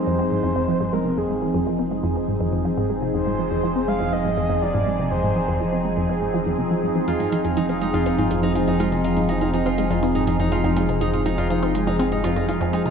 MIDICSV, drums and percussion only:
0, 0, Header, 1, 2, 480
1, 0, Start_track
1, 0, Key_signature, -4, "minor"
1, 0, Tempo, 491803
1, 1148, Time_signature, 4, 2, 24, 8
1, 12592, End_track
2, 0, Start_track
2, 0, Title_t, "Drums"
2, 6909, Note_on_c, 9, 42, 64
2, 7006, Note_off_c, 9, 42, 0
2, 7028, Note_on_c, 9, 42, 37
2, 7126, Note_off_c, 9, 42, 0
2, 7148, Note_on_c, 9, 42, 88
2, 7148, Note_on_c, 9, 63, 40
2, 7246, Note_off_c, 9, 42, 0
2, 7246, Note_off_c, 9, 63, 0
2, 7268, Note_on_c, 9, 42, 38
2, 7365, Note_off_c, 9, 42, 0
2, 7388, Note_on_c, 9, 42, 63
2, 7388, Note_on_c, 9, 63, 72
2, 7486, Note_off_c, 9, 42, 0
2, 7486, Note_off_c, 9, 63, 0
2, 7507, Note_on_c, 9, 42, 36
2, 7605, Note_off_c, 9, 42, 0
2, 7628, Note_on_c, 9, 42, 80
2, 7725, Note_off_c, 9, 42, 0
2, 7749, Note_on_c, 9, 42, 37
2, 7749, Note_on_c, 9, 63, 38
2, 7846, Note_off_c, 9, 42, 0
2, 7846, Note_off_c, 9, 63, 0
2, 7868, Note_on_c, 9, 42, 61
2, 7965, Note_off_c, 9, 42, 0
2, 7989, Note_on_c, 9, 42, 39
2, 7989, Note_on_c, 9, 63, 73
2, 8086, Note_off_c, 9, 42, 0
2, 8086, Note_off_c, 9, 63, 0
2, 8109, Note_on_c, 9, 42, 83
2, 8207, Note_off_c, 9, 42, 0
2, 8229, Note_on_c, 9, 42, 37
2, 8327, Note_off_c, 9, 42, 0
2, 8349, Note_on_c, 9, 42, 59
2, 8349, Note_on_c, 9, 63, 40
2, 8447, Note_off_c, 9, 42, 0
2, 8447, Note_off_c, 9, 63, 0
2, 8468, Note_on_c, 9, 42, 38
2, 8566, Note_off_c, 9, 42, 0
2, 8589, Note_on_c, 9, 42, 90
2, 8589, Note_on_c, 9, 63, 75
2, 8686, Note_off_c, 9, 42, 0
2, 8686, Note_off_c, 9, 63, 0
2, 8708, Note_on_c, 9, 42, 36
2, 8805, Note_off_c, 9, 42, 0
2, 8828, Note_on_c, 9, 42, 61
2, 8925, Note_off_c, 9, 42, 0
2, 8947, Note_on_c, 9, 42, 36
2, 8947, Note_on_c, 9, 63, 41
2, 9044, Note_off_c, 9, 42, 0
2, 9044, Note_off_c, 9, 63, 0
2, 9067, Note_on_c, 9, 42, 85
2, 9164, Note_off_c, 9, 42, 0
2, 9187, Note_on_c, 9, 42, 37
2, 9187, Note_on_c, 9, 63, 71
2, 9285, Note_off_c, 9, 42, 0
2, 9285, Note_off_c, 9, 63, 0
2, 9307, Note_on_c, 9, 42, 60
2, 9405, Note_off_c, 9, 42, 0
2, 9428, Note_on_c, 9, 42, 36
2, 9525, Note_off_c, 9, 42, 0
2, 9547, Note_on_c, 9, 42, 81
2, 9547, Note_on_c, 9, 63, 39
2, 9645, Note_off_c, 9, 42, 0
2, 9645, Note_off_c, 9, 63, 0
2, 9668, Note_on_c, 9, 42, 34
2, 9765, Note_off_c, 9, 42, 0
2, 9787, Note_on_c, 9, 42, 60
2, 9787, Note_on_c, 9, 63, 68
2, 9885, Note_off_c, 9, 42, 0
2, 9885, Note_off_c, 9, 63, 0
2, 9907, Note_on_c, 9, 42, 36
2, 10005, Note_off_c, 9, 42, 0
2, 10027, Note_on_c, 9, 42, 82
2, 10125, Note_off_c, 9, 42, 0
2, 10147, Note_on_c, 9, 42, 37
2, 10147, Note_on_c, 9, 63, 41
2, 10244, Note_off_c, 9, 42, 0
2, 10244, Note_off_c, 9, 63, 0
2, 10266, Note_on_c, 9, 42, 59
2, 10364, Note_off_c, 9, 42, 0
2, 10388, Note_on_c, 9, 42, 36
2, 10388, Note_on_c, 9, 63, 71
2, 10485, Note_off_c, 9, 42, 0
2, 10485, Note_off_c, 9, 63, 0
2, 10508, Note_on_c, 9, 42, 88
2, 10605, Note_off_c, 9, 42, 0
2, 10627, Note_on_c, 9, 42, 36
2, 10725, Note_off_c, 9, 42, 0
2, 10748, Note_on_c, 9, 42, 60
2, 10748, Note_on_c, 9, 63, 43
2, 10846, Note_off_c, 9, 42, 0
2, 10846, Note_off_c, 9, 63, 0
2, 10868, Note_on_c, 9, 42, 36
2, 10965, Note_off_c, 9, 42, 0
2, 10988, Note_on_c, 9, 42, 82
2, 10988, Note_on_c, 9, 63, 73
2, 11086, Note_off_c, 9, 42, 0
2, 11086, Note_off_c, 9, 63, 0
2, 11107, Note_on_c, 9, 42, 36
2, 11205, Note_off_c, 9, 42, 0
2, 11228, Note_on_c, 9, 42, 62
2, 11325, Note_off_c, 9, 42, 0
2, 11347, Note_on_c, 9, 42, 36
2, 11347, Note_on_c, 9, 63, 41
2, 11445, Note_off_c, 9, 42, 0
2, 11445, Note_off_c, 9, 63, 0
2, 11467, Note_on_c, 9, 42, 83
2, 11565, Note_off_c, 9, 42, 0
2, 11588, Note_on_c, 9, 42, 35
2, 11588, Note_on_c, 9, 63, 71
2, 11685, Note_off_c, 9, 42, 0
2, 11685, Note_off_c, 9, 63, 0
2, 11708, Note_on_c, 9, 42, 58
2, 11806, Note_off_c, 9, 42, 0
2, 11828, Note_on_c, 9, 42, 37
2, 11926, Note_off_c, 9, 42, 0
2, 11947, Note_on_c, 9, 42, 86
2, 11947, Note_on_c, 9, 63, 43
2, 12045, Note_off_c, 9, 42, 0
2, 12045, Note_off_c, 9, 63, 0
2, 12067, Note_on_c, 9, 42, 36
2, 12165, Note_off_c, 9, 42, 0
2, 12187, Note_on_c, 9, 42, 59
2, 12187, Note_on_c, 9, 63, 73
2, 12285, Note_off_c, 9, 42, 0
2, 12285, Note_off_c, 9, 63, 0
2, 12308, Note_on_c, 9, 42, 36
2, 12406, Note_off_c, 9, 42, 0
2, 12427, Note_on_c, 9, 42, 86
2, 12525, Note_off_c, 9, 42, 0
2, 12547, Note_on_c, 9, 42, 35
2, 12547, Note_on_c, 9, 63, 42
2, 12592, Note_off_c, 9, 42, 0
2, 12592, Note_off_c, 9, 63, 0
2, 12592, End_track
0, 0, End_of_file